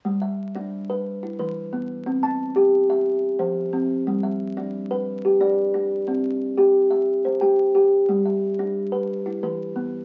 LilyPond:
\new Staff \with { instrumentName = "Kalimba" } { \time 12/8 \key g \mixolydian \tempo 4. = 119 << { r8 e''4. r4. e'8 b'4. r8 | r8 a''4. r2 c''4. r8 | r8 e''4. r4. g'8 d''4. r8 | r2. r8 c''8 g''4. r8 |
r8 e''4. r4. e'8 b'4. r8 | } \\ { g4 r8 d'4 b'8 r4 e4 b4 | c'4 r8 g'4 e''8 r4 f4 c'4 | g4 r8 d'4 b'4 r8 d'4 d'4 | c'4 r8 g'4 e''4 r8 g'4 g'4 |
g4 r8 d'4 b'8 r4 e4 b4 | } >> }